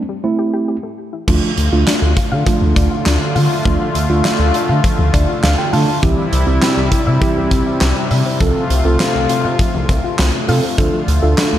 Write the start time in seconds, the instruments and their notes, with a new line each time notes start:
0.09 synth pluck G3
0.24 tine electric piano A3 C4 E4, synth pluck C4
0.39 synth pluck G4
0.53 synth pluck G4
0.68 synth pluck G4
0.83 synth pluck A3
1.13 synth pluck E4
1.28 analog synth bass D2, analog synth pad D3 A3 F4, synth pluck F3, tine electric piano A3 D4 F4, kick, crash
1.43 synth pluck F3
1.57 analog synth bass D2, closed hi-hat
1.72 analog synth bass D2, tine electric piano A3 D4 F4, synth pluck F4
1.87 synth pluck D4, snare, clap, closed hi-hat
2.02 analog synth bass D2, synth pluck A3
2.17 synth pluck F4, kick, closed hi-hat
2.32 analog synth bass D3, synth pluck F5
2.47 synth pluck F3, tine electric piano A3 D4 F4, kick, closed hi-hat
2.61 analog synth bass D2, synth pluck F3
2.76 analog synth bass D2, synth pluck D4, kick, closed hi-hat
2.91 synth pluck F4
3.06 analog synth bass D2, synth pluck D4, snare, clap, closed hi-hat
3.21 synth pluck A3
3.35 analog synth bass D3, synth pluck F5, open hi-hat
3.50 synth pluck D4
3.65 analog synth bass D2, synth pluck F3, tine electric piano A3 D4 F4, kick, closed hi-hat
3.80 synth pluck F3
3.95 analog synth bass D2, closed hi-hat
4.10 analog synth bass D2, tine electric piano A3 D4 F4, synth pluck F4
4.25 synth pluck D4, snare, clap, closed hi-hat
4.39 analog synth bass D2, synth pluck A3
4.54 synth pluck F4, closed hi-hat
4.69 analog synth bass D3, synth pluck F5
4.84 synth pluck F3, kick, closed hi-hat
4.99 analog synth bass D2, synth pluck F3
5.14 analog synth bass D2, synth pluck D4, tine electric piano D5, kick, closed hi-hat
5.29 synth pluck F4
5.43 analog synth bass D2, synth pluck D4, tine electric piano F5, snare, clap, closed hi-hat
5.58 synth pluck A3, tine electric piano G5
5.73 analog synth bass D3, tine electric piano A3 D4 F4 A5, synth pluck F5, open hi-hat
5.88 synth pluck D4
6.03 analog synth bass C2, analog synth pad C3 G3 E4, synth pluck E3, tine electric piano C4 E4 G4, kick, closed hi-hat
6.18 synth pluck E3
6.33 analog synth bass C2, closed hi-hat
6.47 analog synth bass C2, tine electric piano C4 E4 G4, synth pluck E4
6.62 synth pluck C4, snare, clap, closed hi-hat
6.77 analog synth bass C2, synth pluck G3
6.92 synth pluck E4, kick, closed hi-hat
7.07 analog synth bass C3, synth pluck E5
7.21 synth pluck E3, tine electric piano C4 E4 G4, kick, closed hi-hat
7.36 analog synth bass C2, synth pluck E3
7.51 analog synth bass C2, synth pluck C4, kick, closed hi-hat
7.66 synth pluck E4
7.81 analog synth bass C2, synth pluck C4, snare, clap, closed hi-hat
7.96 synth pluck G3
8.11 analog synth bass C3, synth pluck E5, open hi-hat
8.26 synth pluck C4
8.40 analog synth bass C2, synth pluck F3, analog synth pad A3 F4, tine electric piano C4 F4 A4, kick, closed hi-hat
8.55 synth pluck F3
8.70 analog synth bass C2, closed hi-hat
8.85 analog synth bass C2, tine electric piano C4 F4 A4, synth pluck F4
9.00 synth pluck C4, snare, clap, closed hi-hat
9.15 analog synth bass C2, synth pluck A3
9.29 synth pluck F4, closed hi-hat
9.44 analog synth bass C3, synth pluck F5
9.59 synth pluck F3, kick, closed hi-hat
9.74 analog synth bass C2, synth pluck F3
9.89 analog synth bass C2, synth pluck C4, kick, closed hi-hat
10.04 synth pluck F4
10.19 analog synth bass C2, synth pluck C4, snare, clap, closed hi-hat
10.34 synth pluck A3
10.48 analog synth bass C3, tine electric piano C4 F4 A4, synth pluck F5, open hi-hat
10.63 synth pluck C4
10.78 analog synth bass D2, analog synth pad D3 F4, synth pluck F3, tine electric piano D4 F4 A4, kick, closed hi-hat
10.93 synth pluck F3
11.08 analog synth bass D2, closed hi-hat
11.23 analog synth bass D2, tine electric piano D4 F4 A4, synth pluck F4
11.38 synth pluck D4, snare, clap, closed hi-hat
11.52 analog synth bass D2, synth pluck A3